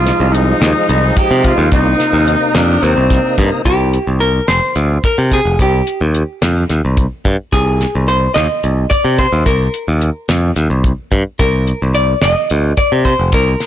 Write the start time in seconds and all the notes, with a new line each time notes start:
Already playing: C2 F3 G#3 D#4 F4
0.07 snare, closed hi-hat
0.20 C2
0.33 D#4, closed hi-hat
0.62 D#2, snare, closed hi-hat
0.89 C2, closed hi-hat
1.17 G4, kick, closed hi-hat
1.31 C3
1.44 F4, kick, closed hi-hat
1.58 D#2
1.71 C2 C3 A#3 D#4, kick, closed hi-hat
2.00 snare, closed hi-hat
2.13 D#2
2.28 closed hi-hat
2.55 F2 D4, snare, closed hi-hat
2.83 D#2 C4, closed hi-hat
2.97 C2
3.10 kick, snare, closed hi-hat
3.38 G2 A#3, kick, snare, closed hi-hat
3.65 C2 G4, kick, closed hi-hat
3.94 closed hi-hat
4.07 C2
4.20 A#4, closed hi-hat
4.48 F1 C5, snare, closed hi-hat
4.75 D2, closed hi-hat
5.04 A#4, kick, closed hi-hat
5.18 C3
5.31 G#4, kick, closed hi-hat
5.45 F1
5.59 C2 G4, kick, closed hi-hat
5.87 closed hi-hat
6.01 D#2
6.14 closed hi-hat
6.42 F2, snare, closed hi-hat
6.70 D#2, snare, closed hi-hat
6.85 C2
6.97 kick, closed hi-hat
7.25 G2, kick, closed hi-hat
7.52 C2 G#4, kick, closed hi-hat
7.81 snare, closed hi-hat
7.95 C2
8.08 C5, closed hi-hat
8.34 D#2 D#5, snare, closed hi-hat
8.63 C2, closed hi-hat
8.90 D5, kick, closed hi-hat
9.05 C3
9.19 C5, kick, closed hi-hat
9.33 D#2
9.46 C2 A#4, kick, closed hi-hat
9.74 closed hi-hat
9.88 D#2
10.01 closed hi-hat
10.29 F2, snare, closed hi-hat
10.56 D#2, closed hi-hat
10.70 C2
10.84 kick, closed hi-hat
11.12 G2, kick, closed hi-hat
11.39 C2 A#4, kick, closed hi-hat
11.67 closed hi-hat
11.82 C2
11.95 D5, closed hi-hat
12.22 F1 D#5, snare, closed hi-hat
12.50 D2, closed hi-hat
12.77 D5, kick, closed hi-hat
12.92 C3
13.05 C5, kick, closed hi-hat
13.19 F1
13.32 C2 A#4, kick, closed hi-hat
13.60 snare, closed hi-hat